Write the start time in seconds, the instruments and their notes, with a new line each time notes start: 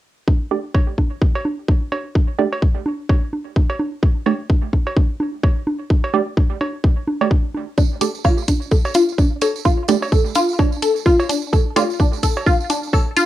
0.28 kick, high conga
0.51 synth stab A3 G4 D5, high conga
0.75 kick, cowbell, high conga
0.98 kick, high conga
1.22 kick, high conga
1.35 cowbell
1.45 high conga
1.68 kick, high conga
1.92 cowbell, high conga
2.15 kick, high conga
2.39 synth stab A3 G4 D5, high conga
2.52 cowbell
2.62 kick, high conga
2.86 high conga
3.09 kick, cowbell, high conga
3.33 high conga
3.56 kick, high conga
3.70 cowbell
3.79 high conga
4.03 kick, high conga
4.26 synth stab A3 G4 D5, cowbell, high conga
4.50 kick, high conga
4.73 kick, high conga
4.87 cowbell
4.96 kick, high conga
5.20 high conga
5.43 kick, cowbell, high conga
5.67 high conga
5.90 kick, high conga
6.04 cowbell
6.14 synth stab A3 G4 D5, high conga
6.37 kick, high conga
6.61 cowbell, high conga
6.84 kick, high conga
7.08 high conga
7.21 synth stab A3 G4 D5, cowbell
7.31 kick, high conga
7.54 high conga
7.78 synth arpeggio sound D4, kick, tambourine, high conga
8.01 synth stab A3 G4 D5, synth arpeggio sound A4, closed hi-hat, tambourine, high conga
8.15 tambourine
8.24 synth arpeggio sound F4, kick, tambourine, cowbell, high conga
8.38 tambourine
8.48 synth arpeggio sound D4, kick, closed hi-hat, tambourine, high conga
8.62 tambourine
8.71 synth arpeggio sound A4, kick, tambourine, high conga
8.85 tambourine, cowbell
8.94 synth arpeggio sound F4, closed hi-hat, tambourine, high conga
9.09 tambourine
9.18 synth arpeggio sound D4, kick, tambourine, high conga
9.41 synth arpeggio sound A4, closed hi-hat, tambourine, cowbell, high conga
9.56 tambourine
9.65 synth arpeggio sound F4, kick, tambourine, high conga
9.88 synth stab A3 G4 D5, synth arpeggio sound D4, closed hi-hat, tambourine, high conga
10.02 tambourine, cowbell
10.12 synth arpeggio sound A4, kick, tambourine, high conga
10.26 tambourine
10.35 synth arpeggio sound F4, closed hi-hat, tambourine, high conga
10.49 tambourine
10.59 synth arpeggio sound D4, kick, tambourine, cowbell, high conga
10.72 tambourine
10.82 synth arpeggio sound A4, closed hi-hat, tambourine, high conga
10.96 tambourine
11.06 synth arpeggio sound F4, kick, tambourine, high conga
11.19 tambourine, cowbell
11.29 synth arpeggio sound D4, closed hi-hat, tambourine, high conga
11.42 tambourine
11.53 synth arpeggio sound A4, kick, tambourine, high conga
11.76 synth stab A3 G4 D5, synth arpeggio sound F4, closed hi-hat, tambourine, cowbell, high conga
11.90 tambourine
12.00 synth arpeggio sound D4, kick, tambourine, high conga
12.13 tambourine
12.23 synth arpeggio sound A4, kick, closed hi-hat, tambourine, high conga
12.37 tambourine, cowbell
12.46 synth arpeggio sound F4, kick, tambourine, high conga
12.60 tambourine
12.70 synth arpeggio sound D4, closed hi-hat, tambourine, high conga
12.83 tambourine
12.93 synth arpeggio sound A4, kick, tambourine, cowbell, high conga
13.17 synth arpeggio sound F4, closed hi-hat, tambourine, high conga